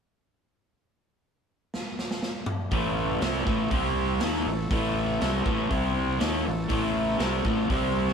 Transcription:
1.74 snare
1.99 snare
2.11 snare
2.22 snare
2.46 mid tom
2.71 fingered electric bass A1, overdriven electric guitar A2 E3 A3, transistor combo organ E4 A4 C#5, kick, open hi-hat
3.21 fingered electric bass C2, overdriven electric guitar C3 G3 C4, snare, open hi-hat
3.45 fingered electric bass A1, overdriven electric guitar A2 E3 A3, kick
3.71 fingered electric bass C2, overdriven electric guitar C3 G3 C4, transistor combo organ C4 G4 C5, kick, open hi-hat
4.20 fingered electric bass D#2, overdriven electric guitar D#3 A#3 D#4, transistor combo organ E4 A4 C#5, snare, open hi-hat
4.46 fingered electric bass A1, overdriven electric guitar A2 E3
4.71 fingered electric bass A1, overdriven electric guitar A2 E3 A3, kick, open hi-hat
5.21 fingered electric bass C2, overdriven electric guitar C3 G3 C4, snare, open hi-hat
5.44 fingered electric bass A1, overdriven electric guitar A2 E3 A3, kick
5.70 fingered electric bass C2, overdriven electric guitar C3 G3 C4, transistor combo organ C4 G4 C5, kick, open hi-hat
6.19 fingered electric bass D#2, overdriven electric guitar D#3 A#3 D#4, transistor combo organ E4, snare, open hi-hat
6.23 transistor combo organ A4 C#5
6.46 fingered electric bass A1, overdriven electric guitar A2 E3
6.69 fingered electric bass A1, overdriven electric guitar A2 E3 A3, kick, open hi-hat
7.18 fingered electric bass C2, overdriven electric guitar C3 G3 C4, snare, open hi-hat
7.44 fingered electric bass A1, overdriven electric guitar A2 E3 A3, kick
7.69 fingered electric bass C2, overdriven electric guitar C3 G3 C4, transistor combo organ C4 G4 C5, kick, open hi-hat
8.08 snare

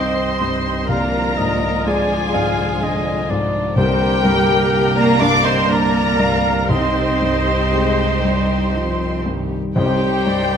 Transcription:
Already playing: felt piano C2 G2 C4 D#4, double bass section C2, french horn section D#3 C4, violin section C4 D#4 C6, cello section C4, viola section C5, clarinet D#5, flute D#5
0.41 felt piano G2
0.88 felt piano C2, timpani C3, french horn section D3 F3, cello section A#3, violin section D4 F4 A#5, viola section A#4, flute D5, clarinet F5
1.38 felt piano G#2, clarinet D#5
1.85 cello section G#3, felt piano F4, viola section G#4, flute D5, clarinet D5, violin section G#5
2.34 felt piano G#2, clarinet F5
2.82 felt piano D3, clarinet D#5
3.29 felt piano G#2, clarinet D5
3.76 double bass section C2, felt piano C2, timpani C3, cello section G3, french horn section A#3, viola section G4, flute A#4, violin section A#4 G5, clarinet C5
4.25 felt piano G2, clarinet A#4
4.72 felt piano G4
4.95 cello section A#3, viola section A#4, flute D5, violin section A#5
5.19 felt piano G2, cello section D4, viola section D5, flute F5, violin section D6
5.44 cello section C4, viola section C5, flute D#5, violin section C6
5.68 cello section A#3, felt piano D4, viola section A#4, flute D5, clarinet D5, violin section A#5
6.19 felt piano G2, clarinet F5
6.69 felt piano C2, timpani C3, french horn section G3 D#4, cello section C4, violin section D#4 G4 C6, viola section C5, flute D#5, clarinet D#5
7.22 felt piano G2
7.72 french horn section G#3, felt piano G4
8.25 felt piano G2, french horn section G3
8.75 french horn section F3, felt piano D#4
9.26 felt piano G2, french horn section D#3
9.76 double bass section C2, felt piano C2, timpani C3, cello section G3, violin section D#4 G4 G5, viola section G4, flute C5, clarinet C5
10.27 felt piano G2, clarinet D5

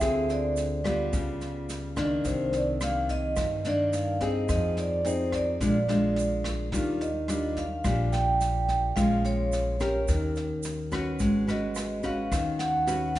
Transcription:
Already playing: vibraphone E5
0.00 upright bass D2, nylon-string guitar D3 C4 F4 G#4, kick, cross-stick, snare, shaker
0.30 vibraphone D5, snare, shaker
0.56 snare, shaker
0.84 nylon-string guitar G3 B3 F4, kick, cross-stick, snare, shaker
1.13 upright bass C#2, nylon-string guitar C#3, kick, snare, shaker
1.41 snare, shaker
1.69 snare, shaker
1.96 nylon-string guitar D#3 A#3 D4, kick, cross-stick, snare, shaker
2.25 upright bass C2, nylon-string guitar C3, vibraphone C5, kick, snare, shaker
2.53 vibraphone D5, snare, shaker
2.81 nylon-string guitar D#3 A#3, vibraphone F5, cross-stick, snare, shaker
3.09 vibraphone D#5, kick, snare, shaker
3.36 nylon-string guitar G2, upright bass G2, kick, cross-stick, snare, shaker
3.65 nylon-string guitar D#3 A#3 D4, snare, shaker
3.69 vibraphone D5
3.93 vibraphone F5, snare, shaker
4.21 nylon-string guitar C4 D#4 G#4, vibraphone D#5, kick, snare, shaker
4.49 upright bass F2, nylon-string guitar F3, vibraphone D#5, kick, cross-stick, snare, shaker
4.77 vibraphone D5, snare, shaker
5.04 nylon-string guitar C4 D#4 G#4, vibraphone C5, snare, shaker
5.32 vibraphone D5, kick, cross-stick, snare, shaker
5.60 upright bass A#1, nylon-string guitar A#2 G#3 D4 F4, kick, snare, shaker
5.88 nylon-string guitar G#3 D4 F4, snare, shaker
6.16 snare, shaker
6.44 kick, cross-stick, snare, shaker
6.72 upright bass D#2, nylon-string guitar D#3 G3 D4 F4, kick, snare, shaker
7.01 vibraphone D#5, snare, shaker
7.28 nylon-string guitar G3 D4 F4, cross-stick, snare, shaker
7.57 vibraphone F5, kick, snare, shaker
7.84 upright bass A#1, nylon-string guitar A#2 G3 D4 F4, kick, cross-stick, snare, shaker
8.12 vibraphone G5, snare, shaker
8.41 snare, shaker
8.68 kick, snare, shaker
8.96 upright bass A#1, nylon-string guitar A#2 G#3 C#4 F4, vibraphone F5, kick, cross-stick, snare, shaker
9.25 vibraphone C#5, snare, shaker
9.52 snare, shaker
9.80 nylon-string guitar C#4 G4 A#4, kick, cross-stick, snare, shaker
10.08 upright bass D#2, nylon-string guitar D#3, kick, snare, shaker
10.36 snare, shaker
10.63 snare, shaker
10.91 nylon-string guitar C#4 F#4 B4, kick, cross-stick, snare, shaker
11.19 upright bass G#1, nylon-string guitar G#3, kick, snare, shaker
11.47 nylon-string guitar C#4 F#4 B4, vibraphone D#5, snare, shaker
11.75 cross-stick, snare, shaker
12.03 nylon-string guitar C#4 F#4 B4, vibraphone F5, kick, snare, shaker
12.32 upright bass D#2, nylon-string guitar D#3, kick, cross-stick, snare, shaker
12.59 vibraphone F#5, snare, shaker
12.87 nylon-string guitar C#4 F#4 B4, snare, shaker
13.15 kick, snare, shaker

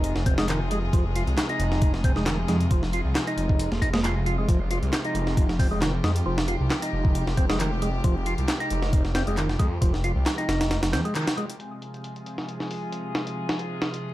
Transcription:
Already playing: detuned saw bass F1, string section C3 F3 G#3 F4 G#4, tonewheel organ D#4
0.04 closed hi-hat
0.16 detuned saw bass F1, snare
0.26 detuned saw bass F1, tonewheel organ C4, kick, closed hi-hat
0.38 tonewheel organ G#3, snare
0.48 tonewheel organ D#3, clap, closed hi-hat
0.71 tonewheel organ G#3, closed hi-hat
0.93 detuned saw bass F1, tonewheel organ F3, kick, closed hi-hat
1.16 tonewheel organ F4, closed hi-hat
1.27 detuned saw bass C2, closed hi-hat
1.38 snare, clap, closed hi-hat
1.49 tonewheel organ D#4, closed hi-hat
1.59 detuned saw bass F1, closed hi-hat
1.72 snare
1.82 kick, closed hi-hat
1.94 snare
2.04 tonewheel organ C4, kick, closed hi-hat
2.16 detuned saw bass F1, tonewheel organ G#3, snare
2.26 tonewheel organ D#3, snare, clap, closed hi-hat
2.48 detuned saw bass F2, tonewheel organ G#3, snare, closed hi-hat
2.60 closed hi-hat
2.71 detuned saw bass F1, tonewheel organ F3, kick, closed hi-hat
2.83 snare
2.93 tonewheel organ F4, closed hi-hat
3.05 detuned saw bass C2
3.15 snare, clap, closed hi-hat
3.27 tonewheel organ D#4, closed hi-hat
3.37 detuned saw bass F1, closed hi-hat
3.49 kick
3.59 closed hi-hat
3.71 detuned saw bass F1, snare
3.82 detuned saw bass F1, tonewheel organ D#4, kick, closed hi-hat
3.93 tonewheel organ G#3, snare
4.04 tonewheel organ F4, clap, closed hi-hat
4.26 tonewheel organ F4, closed hi-hat
4.38 tonewheel organ G#3
4.48 detuned saw bass F1, tonewheel organ F3, string section G4, kick, closed hi-hat
4.71 tonewheel organ F4, closed hi-hat
4.82 detuned saw bass C2, closed hi-hat
4.93 snare, clap, closed hi-hat
5.05 tonewheel organ D#4, closed hi-hat
5.15 detuned saw bass F1, closed hi-hat
5.27 snare
5.37 kick, closed hi-hat
5.49 snare
5.59 tonewheel organ C4, kick, open hi-hat
5.71 detuned saw bass F1, tonewheel organ G#3
5.81 tonewheel organ D#3, snare, clap, closed hi-hat
6.04 detuned saw bass F2, tonewheel organ G#3, snare
6.16 closed hi-hat
6.26 detuned saw bass F1, tonewheel organ F3
6.38 snare
6.48 tonewheel organ F4, closed hi-hat
6.61 detuned saw bass C2
6.70 snare, clap
6.82 tonewheel organ D#4, closed hi-hat
6.93 detuned saw bass F1
7.05 kick
7.15 closed hi-hat
7.27 detuned saw bass F1, snare
7.37 detuned saw bass F1, tonewheel organ C4, kick, closed hi-hat
7.49 tonewheel organ G#3, snare
7.60 tonewheel organ D#3, clap, closed hi-hat
7.82 tonewheel organ G#3, closed hi-hat
8.04 detuned saw bass F1, tonewheel organ F3, kick, closed hi-hat
8.26 tonewheel organ F4, closed hi-hat
8.38 detuned saw bass C2, closed hi-hat
8.48 snare, clap, closed hi-hat
8.60 tonewheel organ D#4, closed hi-hat
8.70 detuned saw bass F1, closed hi-hat
8.83 snare
8.93 kick, closed hi-hat
9.05 snare
9.15 tonewheel organ C4, snare, closed hi-hat
9.27 detuned saw bass F1, tonewheel organ G#3, closed hi-hat
9.37 tonewheel organ D#3, clap, closed hi-hat
9.49 snare
9.59 detuned saw bass F2, tonewheel organ G#3, kick, closed hi-hat
9.81 detuned saw bass F1, tonewheel organ F3, kick, closed hi-hat
9.94 snare
10.04 tonewheel organ F4, closed hi-hat
10.16 detuned saw bass C2
10.26 snare, clap, closed hi-hat
10.38 tonewheel organ D#4, closed hi-hat
10.49 detuned saw bass F1, snare, closed hi-hat
10.61 snare, closed hi-hat
10.71 snare, closed hi-hat
10.83 detuned saw bass F1, snare, closed hi-hat
10.93 detuned saw bass F2, tonewheel organ C4, snare, closed hi-hat
11.05 tonewheel organ G#3, closed hi-hat
11.15 tonewheel organ D#3, clap, closed hi-hat
11.27 snare, closed hi-hat
11.37 tonewheel organ G#3, closed hi-hat
11.50 closed hi-hat
11.60 string section C3 F3 G#3 F4 G#4, closed hi-hat
11.82 closed hi-hat
11.94 closed hi-hat
12.04 closed hi-hat
12.16 closed hi-hat
12.26 closed hi-hat
12.38 snare
12.49 closed hi-hat
12.60 snare
12.71 open hi-hat
12.92 closed hi-hat
13.15 snare
13.27 closed hi-hat
13.49 snare
13.59 closed hi-hat
13.82 snare
13.94 closed hi-hat

